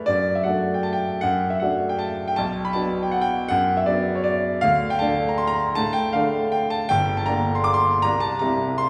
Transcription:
Already playing: A2 G3 B4 C#5 D5
0.06 F#2 D5
0.35 E5
0.44 F#3 A3 D4 F#5
0.74 G5
0.83 A5
0.93 G5
1.21 F#2 F#5
1.50 E5
1.60 F#3 A3 D4 F#5
1.89 G5
1.99 A5
2.28 G5
2.36 B1 A5
2.65 B5
2.73 F#3 B3 D4 A5
3.03 G5
3.11 F#5
3.21 G5
3.48 F#2 F#5
3.77 E5
3.86 F#3 B3 D4 D5
4.15 C#5
4.24 D5
4.61 D2 F5
4.90 G5
4.99 D3 A3 D4 A5
5.29 A#5
5.38 C6
5.47 A#5
5.75 A2 A5
5.93 G5
6.13 D3 A3 D4 F5
6.52 G5
6.70 A5
6.89 G1 G5
7.17 A5
7.26 D3 A#3 D4 A#5
7.55 C6
7.64 D6
7.74 C6
8.02 C2 A#5
8.20 A5
8.39 C3 G3 E4 A#5
8.78 C6

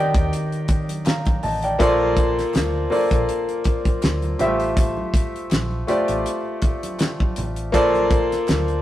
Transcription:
Already playing: D#3 D#4 G4 D5 F5 G5
0.14 D#2, kick, closed hi-hat
0.33 closed hi-hat
0.52 closed hi-hat
0.68 kick, closed hi-hat
0.89 closed hi-hat, high conga
1.06 F5 A#5, snare, clap, closed hi-hat
1.25 kick, closed hi-hat, high conga
1.43 A1 D#5 A5, open hi-hat, low conga
1.62 D5 G5, closed hi-hat
1.79 A#1 A#3 F4 A4 C5 D5, kick, closed hi-hat, muted conga, low conga
2.00 muted conga, high conga
2.17 kick, closed hi-hat
2.38 snare, closed hi-hat
2.54 D2, snare, clap, closed hi-hat, muted conga, high conga
2.74 muted conga
2.90 A#3 F4 A4 C5 D5, open hi-hat, high conga, low conga
3.11 A#1, kick, closed hi-hat
3.29 closed hi-hat
3.48 closed hi-hat, muted conga
3.64 kick, closed hi-hat
3.85 kick, closed hi-hat, high conga
4.02 D2, snare, clap, closed hi-hat
4.22 closed hi-hat, high conga
4.39 A1 G3 F4 G4 C5 E5, closed hi-hat, low conga
4.46 A3
4.60 closed hi-hat
4.77 kick, closed hi-hat, muted conga, low conga
4.97 muted conga, high conga
5.14 kick, closed hi-hat
5.36 closed hi-hat
5.51 A#1, snare, clap, closed hi-hat, muted conga, high conga
5.71 muted conga
5.87 A3 F4 G4 C5 D5, closed hi-hat, high conga, low conga
6.08 A1, closed hi-hat
6.26 closed hi-hat, muted conga
6.62 kick, closed hi-hat
6.83 closed hi-hat, high conga
6.99 snare, clap, closed hi-hat, muted conga
7.20 kick, high conga
7.36 A1, closed hi-hat, low conga
7.56 closed hi-hat
7.72 A#1 A#3 F4 A4 C5 D5, kick, closed hi-hat, muted conga, low conga
7.94 closed hi-hat, muted conga, high conga
8.11 kick, closed hi-hat
8.32 snare, closed hi-hat
8.48 D2, snare, clap, closed hi-hat, high conga
8.68 closed hi-hat, muted conga

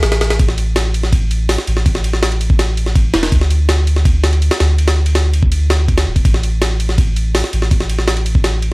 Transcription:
0.03 A1, snare, ride
0.12 snare, ride
0.21 snare, ride
0.30 snare, ride
0.39 A1, kick, ride
0.48 snare
0.58 ride
0.76 snare, ride
0.94 ride
1.03 snare
1.13 kick, ride
1.31 ride
1.49 snare, open hi-hat
1.58 snare
1.67 A1, ride
1.77 snare
1.86 kick, ride
1.95 snare
2.04 ride
2.13 snare
2.23 snare, ride
2.32 ride
2.41 ride
2.50 kick
2.59 snare, ride
2.77 ride
2.86 snare
2.96 kick, ride
3.14 E1, snare, ride
3.23 snare, ride
3.32 D2, kick, ride
3.41 snare
3.50 ride
3.69 snare, ride
3.87 ride
3.96 snare
4.05 kick, ride
4.24 snare, ride
4.33 ride
4.42 ride
4.51 snare, ride
4.60 D2, snare, ride
4.79 ride
4.88 snare, ride
5.06 ride
5.15 snare, ride
5.34 ride
5.43 kick
5.52 ride
5.70 snare, ride
5.88 kick, ride
5.98 snare, ride
6.07 D1
6.16 kick, ride
6.25 A1, kick, ride
6.34 snare
6.43 ride
6.62 snare, ride
6.80 ride
6.89 snare
6.98 kick, ride
7.16 ride
7.35 snare, open hi-hat
7.44 snare
7.53 A1, ride
7.62 snare
7.71 kick, ride
7.80 snare
7.89 ride
7.99 snare
8.08 snare, ride
8.17 ride
8.26 ride
8.35 kick
8.44 snare, ride
8.62 ride

